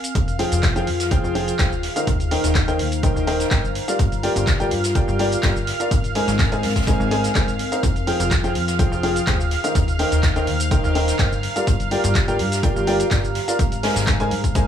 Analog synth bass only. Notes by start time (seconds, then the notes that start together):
0.15 F1
0.52 F1
0.87 F2
1.24 F1
1.59 D#1
2.07 D#1
2.44 D#1
2.79 D#2
3.16 D#1
3.51 G1
3.99 G1
4.36 G1
4.71 G2
5.08 G1
5.43 G1
5.91 G#1
6.28 G#1
6.63 G#2
7.00 G#1
7.35 G#1
7.83 F1
8.20 F1
8.55 F2
8.92 F1
9.27 D#1
9.75 D#1
10.12 D#1
10.47 D#2
10.84 D#1
11.19 G1
11.67 G1
12.04 G1
12.39 G2
12.76 G1
13.11 G1
13.59 G#1
13.96 G#1
14.31 G#2